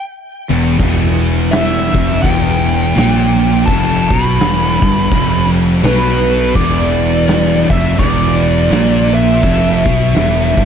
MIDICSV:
0, 0, Header, 1, 5, 480
1, 0, Start_track
1, 0, Tempo, 718563
1, 534, Time_signature, 4, 2, 24, 8
1, 7114, End_track
2, 0, Start_track
2, 0, Title_t, "Lead electric guitar"
2, 0, Program_c, 0, 29
2, 1014, Note_on_c, 0, 76, 75
2, 1484, Note_on_c, 0, 79, 90
2, 1510, Note_off_c, 0, 76, 0
2, 2441, Note_off_c, 0, 79, 0
2, 2443, Note_on_c, 0, 81, 100
2, 2728, Note_on_c, 0, 83, 111
2, 2744, Note_off_c, 0, 81, 0
2, 3669, Note_off_c, 0, 83, 0
2, 3904, Note_on_c, 0, 71, 87
2, 4381, Note_on_c, 0, 74, 100
2, 4396, Note_off_c, 0, 71, 0
2, 5142, Note_off_c, 0, 74, 0
2, 5145, Note_on_c, 0, 76, 106
2, 5336, Note_off_c, 0, 76, 0
2, 5339, Note_on_c, 0, 74, 110
2, 6103, Note_off_c, 0, 74, 0
2, 6106, Note_on_c, 0, 76, 100
2, 7114, Note_off_c, 0, 76, 0
2, 7114, End_track
3, 0, Start_track
3, 0, Title_t, "Distorted electric guitar"
3, 0, Program_c, 1, 30
3, 333, Note_on_c, 1, 40, 105
3, 519, Note_off_c, 1, 40, 0
3, 527, Note_on_c, 1, 40, 106
3, 1288, Note_off_c, 1, 40, 0
3, 1296, Note_on_c, 1, 41, 99
3, 1484, Note_off_c, 1, 41, 0
3, 1486, Note_on_c, 1, 40, 106
3, 1966, Note_off_c, 1, 40, 0
3, 1972, Note_on_c, 1, 46, 106
3, 2449, Note_off_c, 1, 46, 0
3, 2453, Note_on_c, 1, 41, 112
3, 2732, Note_off_c, 1, 41, 0
3, 2734, Note_on_c, 1, 47, 103
3, 2928, Note_off_c, 1, 47, 0
3, 2932, Note_on_c, 1, 40, 100
3, 3211, Note_off_c, 1, 40, 0
3, 3216, Note_on_c, 1, 43, 104
3, 3408, Note_off_c, 1, 43, 0
3, 3410, Note_on_c, 1, 41, 108
3, 3889, Note_off_c, 1, 41, 0
3, 3891, Note_on_c, 1, 47, 101
3, 4369, Note_off_c, 1, 47, 0
3, 4372, Note_on_c, 1, 40, 116
3, 5132, Note_off_c, 1, 40, 0
3, 5140, Note_on_c, 1, 41, 103
3, 5329, Note_off_c, 1, 41, 0
3, 5332, Note_on_c, 1, 40, 107
3, 5809, Note_off_c, 1, 40, 0
3, 5814, Note_on_c, 1, 46, 114
3, 6290, Note_off_c, 1, 46, 0
3, 6295, Note_on_c, 1, 41, 120
3, 6573, Note_off_c, 1, 41, 0
3, 6581, Note_on_c, 1, 47, 114
3, 6771, Note_off_c, 1, 47, 0
3, 6777, Note_on_c, 1, 40, 103
3, 7053, Note_off_c, 1, 40, 0
3, 7062, Note_on_c, 1, 43, 102
3, 7114, Note_off_c, 1, 43, 0
3, 7114, End_track
4, 0, Start_track
4, 0, Title_t, "Fingered electric bass"
4, 0, Program_c, 2, 33
4, 333, Note_on_c, 2, 28, 97
4, 518, Note_off_c, 2, 28, 0
4, 532, Note_on_c, 2, 28, 104
4, 1272, Note_off_c, 2, 28, 0
4, 1299, Note_on_c, 2, 29, 100
4, 1481, Note_off_c, 2, 29, 0
4, 1498, Note_on_c, 2, 28, 96
4, 1951, Note_off_c, 2, 28, 0
4, 1976, Note_on_c, 2, 34, 98
4, 2430, Note_off_c, 2, 34, 0
4, 2456, Note_on_c, 2, 29, 97
4, 2722, Note_off_c, 2, 29, 0
4, 2743, Note_on_c, 2, 35, 101
4, 2924, Note_off_c, 2, 35, 0
4, 2936, Note_on_c, 2, 28, 91
4, 3202, Note_off_c, 2, 28, 0
4, 3221, Note_on_c, 2, 31, 104
4, 3403, Note_off_c, 2, 31, 0
4, 3419, Note_on_c, 2, 29, 98
4, 3872, Note_off_c, 2, 29, 0
4, 3894, Note_on_c, 2, 35, 98
4, 4350, Note_off_c, 2, 35, 0
4, 4379, Note_on_c, 2, 28, 102
4, 5117, Note_off_c, 2, 28, 0
4, 5142, Note_on_c, 2, 29, 102
4, 5324, Note_off_c, 2, 29, 0
4, 5340, Note_on_c, 2, 28, 98
4, 5792, Note_off_c, 2, 28, 0
4, 5816, Note_on_c, 2, 34, 99
4, 6270, Note_off_c, 2, 34, 0
4, 6298, Note_on_c, 2, 29, 97
4, 6563, Note_off_c, 2, 29, 0
4, 6586, Note_on_c, 2, 35, 99
4, 6766, Note_off_c, 2, 35, 0
4, 6777, Note_on_c, 2, 28, 96
4, 7042, Note_off_c, 2, 28, 0
4, 7062, Note_on_c, 2, 31, 100
4, 7114, Note_off_c, 2, 31, 0
4, 7114, End_track
5, 0, Start_track
5, 0, Title_t, "Drums"
5, 532, Note_on_c, 9, 36, 110
5, 533, Note_on_c, 9, 49, 67
5, 598, Note_off_c, 9, 36, 0
5, 600, Note_off_c, 9, 49, 0
5, 1012, Note_on_c, 9, 49, 64
5, 1024, Note_on_c, 9, 38, 119
5, 1079, Note_off_c, 9, 49, 0
5, 1091, Note_off_c, 9, 38, 0
5, 1300, Note_on_c, 9, 36, 107
5, 1367, Note_off_c, 9, 36, 0
5, 1414, Note_on_c, 9, 38, 34
5, 1481, Note_off_c, 9, 38, 0
5, 1496, Note_on_c, 9, 36, 111
5, 1499, Note_on_c, 9, 49, 64
5, 1563, Note_off_c, 9, 36, 0
5, 1566, Note_off_c, 9, 49, 0
5, 1980, Note_on_c, 9, 49, 60
5, 1992, Note_on_c, 9, 38, 106
5, 2047, Note_off_c, 9, 49, 0
5, 2059, Note_off_c, 9, 38, 0
5, 2456, Note_on_c, 9, 36, 98
5, 2459, Note_on_c, 9, 49, 61
5, 2523, Note_off_c, 9, 36, 0
5, 2525, Note_off_c, 9, 49, 0
5, 2742, Note_on_c, 9, 36, 112
5, 2809, Note_off_c, 9, 36, 0
5, 2936, Note_on_c, 9, 49, 59
5, 2948, Note_on_c, 9, 38, 113
5, 3003, Note_off_c, 9, 49, 0
5, 3015, Note_off_c, 9, 38, 0
5, 3222, Note_on_c, 9, 36, 119
5, 3288, Note_off_c, 9, 36, 0
5, 3336, Note_on_c, 9, 38, 36
5, 3403, Note_off_c, 9, 38, 0
5, 3418, Note_on_c, 9, 36, 110
5, 3418, Note_on_c, 9, 49, 64
5, 3484, Note_off_c, 9, 36, 0
5, 3485, Note_off_c, 9, 49, 0
5, 3898, Note_on_c, 9, 49, 62
5, 3910, Note_on_c, 9, 38, 108
5, 3965, Note_off_c, 9, 49, 0
5, 3977, Note_off_c, 9, 38, 0
5, 4378, Note_on_c, 9, 36, 104
5, 4380, Note_on_c, 9, 49, 62
5, 4445, Note_off_c, 9, 36, 0
5, 4447, Note_off_c, 9, 49, 0
5, 4859, Note_on_c, 9, 49, 68
5, 4871, Note_on_c, 9, 38, 111
5, 4926, Note_off_c, 9, 49, 0
5, 4938, Note_off_c, 9, 38, 0
5, 5144, Note_on_c, 9, 36, 111
5, 5211, Note_off_c, 9, 36, 0
5, 5340, Note_on_c, 9, 36, 111
5, 5340, Note_on_c, 9, 49, 65
5, 5407, Note_off_c, 9, 36, 0
5, 5407, Note_off_c, 9, 49, 0
5, 5819, Note_on_c, 9, 49, 64
5, 5831, Note_on_c, 9, 38, 109
5, 5886, Note_off_c, 9, 49, 0
5, 5898, Note_off_c, 9, 38, 0
5, 6301, Note_on_c, 9, 36, 105
5, 6303, Note_on_c, 9, 49, 62
5, 6368, Note_off_c, 9, 36, 0
5, 6370, Note_off_c, 9, 49, 0
5, 6585, Note_on_c, 9, 36, 108
5, 6652, Note_off_c, 9, 36, 0
5, 6779, Note_on_c, 9, 49, 63
5, 6791, Note_on_c, 9, 38, 112
5, 6845, Note_off_c, 9, 49, 0
5, 6857, Note_off_c, 9, 38, 0
5, 7064, Note_on_c, 9, 36, 121
5, 7114, Note_off_c, 9, 36, 0
5, 7114, End_track
0, 0, End_of_file